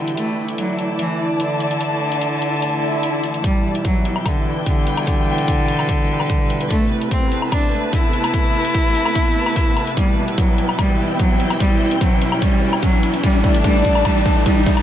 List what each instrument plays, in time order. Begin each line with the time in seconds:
Already playing: supersaw synth B2 E3 G3 E4, string section E4 B4 G5
0.08 closed hi-hat
0.17 supersaw synth D3 A3, cello A3, closed hi-hat
0.24 string section D5
0.48 closed hi-hat
0.58 cello F#3, closed hi-hat
0.71 string section A5
0.79 closed hi-hat
0.99 cello E3, closed hi-hat
1.40 cello D3, closed hi-hat
1.60 closed hi-hat
1.71 closed hi-hat
1.81 closed hi-hat
2.12 closed hi-hat
2.22 closed hi-hat
2.42 closed hi-hat
2.62 closed hi-hat, swell
3.03 closed hi-hat
3.24 closed hi-hat
3.34 closed hi-hat
3.44 supersaw synth B2 E3 G3 E4, cello G3, kick, closed hi-hat, riser
3.73 string section B4, closed hi-hat
3.85 cello F#3, kick, closed hi-hat
4.03 string section G5, closed hi-hat
4.16 low woodblock
4.26 cello D3, kick, closed hi-hat, low woodblock
4.66 cello D3, kick, closed hi-hat
4.87 closed hi-hat
4.97 closed hi-hat, low woodblock
5.07 kick, closed hi-hat
5.38 closed hi-hat
5.48 kick, closed hi-hat
5.68 closed hi-hat
5.79 low woodblock
5.89 kick, closed hi-hat
6.20 low woodblock
6.30 kick, closed hi-hat
6.50 closed hi-hat
6.61 closed hi-hat
6.70 supersaw synth C3 A3 B3 E4, cello A3, kick, closed hi-hat
7.01 string section A5, closed hi-hat
7.11 cello C4, kick, closed hi-hat
7.32 closed hi-hat
7.42 low woodblock
7.52 cello D4, kick, closed hi-hat, low woodblock
7.93 cello E4, kick, closed hi-hat
8.13 closed hi-hat
8.24 closed hi-hat, low woodblock
8.34 kick, closed hi-hat
8.65 closed hi-hat
8.75 kick, closed hi-hat
8.95 closed hi-hat
9.06 low woodblock
9.15 kick, closed hi-hat
9.46 low woodblock
9.56 kick, closed hi-hat
9.77 closed hi-hat, low woodblock
9.87 closed hi-hat
9.97 supersaw synth B2 E3 G3, cello G3, string section E4, kick, closed hi-hat
10.28 closed hi-hat
10.35 cello F#3, string section G5, kick, closed hi-hat
10.58 closed hi-hat
10.69 low woodblock
10.79 cello G3, kick, closed hi-hat, low woodblock
11.19 cello F#3, kick, closed hi-hat
11.40 closed hi-hat
11.50 closed hi-hat, low woodblock
11.60 cello G3, kick, closed hi-hat
11.91 closed hi-hat
12.01 cello F#3, kick, closed hi-hat
12.22 closed hi-hat
12.32 low woodblock
12.42 cello G3, kick, closed hi-hat
12.73 low woodblock
12.83 cello F#3, kick, closed hi-hat
13.03 closed hi-hat
13.14 closed hi-hat
13.23 supersaw synth D3 A3, cello G3, kick, closed hi-hat
13.39 string section D5
13.43 string section A5, kick
13.54 closed hi-hat
13.64 cello G3, kick, closed hi-hat
13.85 kick, closed hi-hat
13.95 low woodblock
14.05 cello G3, kick, closed hi-hat, low woodblock
14.26 kick
14.46 cello G3, kick, closed hi-hat
14.66 kick, closed hi-hat
14.77 closed hi-hat, low woodblock